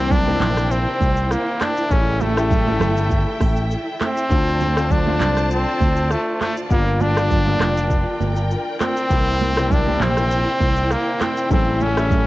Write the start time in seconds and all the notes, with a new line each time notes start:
Already playing: C2 C3 E3 G3 A#3 C4 E4 A#4 C5 G5
0.00 D4
0.11 D4, kick, low conga, shaker
0.26 C3 E3 G3 A#3 D#4, high conga
0.35 E4
0.40 A#1, clap, high conga, low conga, shaker
0.57 cross-stick, shaker
0.71 C4, shaker
1.00 C2, kick, high conga, shaker
1.16 shaker
1.31 A#3, cross-stick, shaker
1.61 D4, cross-stick, clap, high conga, shaker
1.77 shaker
1.89 A1 C#3 E3 G3 A3 C#4 E4 A4 E5 G5, kick, shaker
2.20 A3, high conga, shaker
2.36 C#3 E3 G3 A3 G4, cross-stick, shaker
2.51 kick, low conga, shaker
2.66 C#3 E3 G3 A3 E4, high conga
2.80 G1, cross-stick, high conga, low conga, shaker
2.97 shaker
3.10 kick, shaker
3.40 A1, kick, cross-stick, open hi-hat, high conga, shaker
3.56 shaker
3.71 shaker
4.01 C4, cross-stick, clap, high conga, shaker
4.17 shaker
4.29 D2 D3 F3 A3 C4 F4 C5 D5 A5, kick, shaker
4.60 high conga, shaker
4.76 D3 F3 A3 C4 F4, cross-stick, shaker
4.91 D4, kick, low conga, shaker
5.06 D3 F3 A3 C4 F4, high conga
5.20 C2, clap, high conga, low conga, shaker
5.37 cross-stick, shaker
5.51 C4, shaker
5.80 D2, kick, high conga, shaker
5.96 shaker
6.11 A3, cross-stick, shaker
6.41 A3, cross-stick, clap, high conga, shaker
6.57 shaker
6.69 G1 D3 F3 G3 A#3 F4 A#4 G5, kick, shaker
7.00 D4, high conga, shaker
7.16 D3 F3 G3 A#3 F4, cross-stick, shaker
7.31 kick, low conga, shaker
7.46 D3 F3 G3 A#3 F4, high conga
7.60 F1, cross-stick, clap, high conga, low conga, shaker
7.77 shaker
7.91 kick, shaker
8.21 G1, high conga, shaker
8.36 shaker
8.51 shaker
8.81 C4, cross-stick, clap, high conga, shaker
8.97 shaker
9.09 C2 C3 E3 G3 A#3 E4 C5, kick, shaker
9.40 high conga, shaker
9.56 C3 E3 G3 A#3 E4, cross-stick, shaker
9.71 D4, kick, low conga, shaker
9.86 C3 E3 G3 A#3 E4, high conga
10.00 A#1 C4, clap, high conga, low conga, shaker
10.17 cross-stick, shaker
10.31 shaker
10.60 C2, kick, high conga, shaker
10.76 shaker
10.91 A#3, cross-stick, shaker
11.21 C4, cross-stick, clap, high conga, shaker
11.37 shaker
11.49 A1 C#3 E3 G3 A3 C4 E4 A4 E5, kick, low conga, shaker
11.80 C#4, high conga, shaker
11.96 C#3 E3 G3 A3 E4, cross-stick, shaker
12.11 kick, low conga, shaker